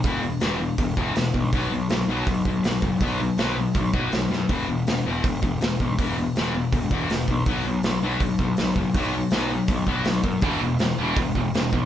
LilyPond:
<<
  \new Staff \with { instrumentName = "Distorted electric guitar" } { \clef bass \time 4/4 \key b \mixolydian \tempo 4 = 162 <e, b, e>8 <e, b,>8 <e, b, e>8 <e, b,>8 <e, b,>8 <e, b, e>8 <e, b,>8 <e, b,>8 | <b, fis b>8 <b, fis>8 <b, fis>8 <b, fis b>8 <b, fis>8 <b, fis>8 <b, fis>8 <b, fis>8 | <b, fis b>8 <b, fis>8 <b, fis b>8 <b, fis>8 <b, fis>8 <b, fis b>8 <b, fis>8 <b, fis>8 | <e, b, e>8 <e, b,>8 <e, b,>8 <e, b, e>8 <e, b,>8 <e, b,>8 <e, b,>8 <e, b,>8 |
<e, b, e>8 <e, b,>8 <e, b, e>8 <e, b,>8 <e, b,>8 <e, b, e>8 <e, b,>8 <e, b,>8 | <b, fis b>8 <b, fis>8 <b, fis>8 <b, fis b>8 <b, fis>8 <b, fis>8 <b, fis>8 <b, fis>8 | <b, fis b>8 <b, fis>8 <b, fis b>8 <b, fis>8 <b, fis>8 <b, fis b>8 <b, fis>8 <b, fis>8 | <e, b, e>8 <e, b,>8 <e, b,>8 <e, b, e>8 <e, b,>8 <e, b,>8 <e, b,>8 <e, b,>8 | }
  \new Staff \with { instrumentName = "Distorted electric guitar" } { \clef bass \time 4/4 \key b \mixolydian r1 | r1 | r1 | r1 |
r1 | r1 | r1 | <e, b, e>8 <e, b,>8 <e, b,>8 <e, b, e>8 <e, b,>8 <e, b,>8 <e, b,>8 <e, b,>8 | }
  \new Staff \with { instrumentName = "Picked electric bass" } { \clef bass \time 4/4 \key b \mixolydian e,,4 e,,4 e,,8 e,,8 e,,8 b,,8 | b,,8 b,,8 b,,8 b,,8 b,,8 b,,8 b,,8 fis,,8 | b,,4 b,,4 b,,8 b,,8 b,,8 fis,8 | e,,8 e,,8 e,,8 e,,8 e,,8 e,,8 e,,8 b,,8 |
e,,4 e,,4 e,,8 e,,8 e,,8 b,,8 | b,,8 b,,8 b,,8 b,,8 b,,8 b,,8 b,,8 fis,,8 | b,,4 b,,4 b,,8 b,,8 b,,8 fis,8 | e,,8 e,,8 e,,8 e,,8 e,,8 e,,8 e,,8 b,,8 | }
  \new DrumStaff \with { instrumentName = "Drums" } \drummode { \time 4/4 <hho bd>4 <hho sn>4 <hho bd>8 bd8 <hho sn>8 bd8 | <hho bd>4 <hho sn>4 <hho bd>8 bd8 <hho sn>8 bd8 | <hho bd>4 <hho sn>4 <hho bd>8 bd8 <hho sn>8 sn8 | <hho bd>4 <hho sn>4 <hho bd>8 bd8 <hho sn>8 bd8 |
<hho bd>4 <hho sn>4 <hho bd>8 bd8 <hho sn>8 bd8 | <hho bd>4 <hho sn>4 <hho bd>8 bd8 <hho sn>8 bd8 | <hho bd>4 <hho sn>4 <hho bd>8 bd8 <hho sn>8 bd8 | <hho bd>4 <hho sn>4 <hho bd>8 bd8 <hho sn>8 bd8 | }
>>